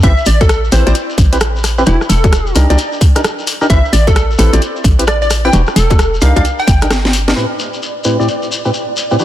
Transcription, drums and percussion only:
0.02 kick, closed hi-hat, shekere
0.18 shekere
0.26 open hi-hat, shekere
0.41 kick, closed hi-hat, high bongo, shekere
0.49 cross-stick, closed hi-hat, shekere
0.64 shekere
0.72 open hi-hat, shekere
0.87 closed hi-hat, high bongo, shekere
0.95 closed hi-hat, shekere
1.10 shekere
1.18 kick, open hi-hat, shekere
1.33 closed hi-hat, shekere
1.40 cross-stick, closed hi-hat, shekere
1.56 shekere
1.64 cross-stick, open hi-hat, shekere
1.78 shekere
1.86 closed hi-hat, shekere
2.01 cross-stick, shekere
2.10 open hi-hat, shekere
2.24 kick, closed hi-hat, high bongo, shekere
2.33 cross-stick, closed hi-hat, shekere
2.46 shekere
2.55 open hi-hat, shekere
2.70 cross-stick, closed hi-hat, high bongo, shekere
2.78 closed hi-hat, shekere
2.92 shekere
3.01 kick, open hi-hat, shekere
3.16 cross-stick, closed hi-hat, shekere
3.24 cross-stick, closed hi-hat, shekere
3.39 shekere
3.47 open hi-hat, shekere
3.61 shekere
3.70 kick, closed hi-hat, shekere
3.85 shekere
3.93 open hi-hat, shekere
4.07 kick, closed hi-hat, high bongo, shekere
4.16 cross-stick, closed hi-hat, shekere
4.31 shekere
4.38 open hi-hat, shekere
4.53 closed hi-hat, high bongo, shekere
4.62 closed hi-hat, shekere
4.76 shekere
4.84 kick, open hi-hat, shekere
4.99 closed hi-hat, shekere
5.07 cross-stick, closed hi-hat, shekere
5.22 shekere
5.30 cross-stick, open hi-hat, shekere
5.45 shekere
5.53 closed hi-hat, shekere
5.67 cross-stick, shekere
5.76 open hi-hat, shekere
5.90 kick, closed hi-hat, high bongo, shekere
5.99 cross-stick, closed hi-hat, shekere
6.14 shekere
6.21 open hi-hat, shekere
6.36 kick, cross-stick, closed hi-hat, high bongo, shekere
6.44 closed hi-hat, shekere
6.59 shekere
6.67 kick, open hi-hat, shekere
6.81 cross-stick, closed hi-hat, shekere
6.91 cross-stick, snare, closed hi-hat, shekere
7.05 snare, shekere
7.13 open hi-hat, shekere
7.28 snare, closed hi-hat, shekere
7.37 shekere
7.59 shekere
7.74 shekere
7.82 shekere
8.04 shekere
8.20 shekere
8.28 shekere
8.42 shekere
8.52 shekere
8.65 shekere
8.73 shekere
8.97 shekere
9.11 shekere
9.19 shekere

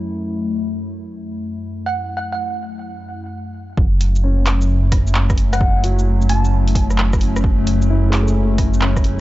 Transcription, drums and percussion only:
3.77 kick
4.01 open hi-hat, shaker
4.16 shaker
4.46 cross-stick, clap, open hi-hat
4.61 shaker
4.92 kick, cross-stick, open hi-hat
5.07 shaker
5.15 clap
5.30 kick, cross-stick, shaker
5.38 open hi-hat
5.53 cross-stick, open hi-hat, shaker
5.61 kick
5.84 open hi-hat, shaker
5.99 shaker
6.22 shaker
6.29 open hi-hat
6.45 shaker
6.68 open hi-hat
6.75 kick, open hi-hat
6.90 cross-stick, shaker
6.98 clap
7.13 kick, cross-stick, shaker
7.21 open hi-hat
7.36 cross-stick, shaker
7.44 kick
7.67 open hi-hat, shaker
7.82 shaker
8.13 cross-stick, clap, open hi-hat
8.28 shaker
8.58 kick, cross-stick, open hi-hat
8.74 shaker
8.81 clap
8.97 kick, cross-stick, shaker
9.04 open hi-hat

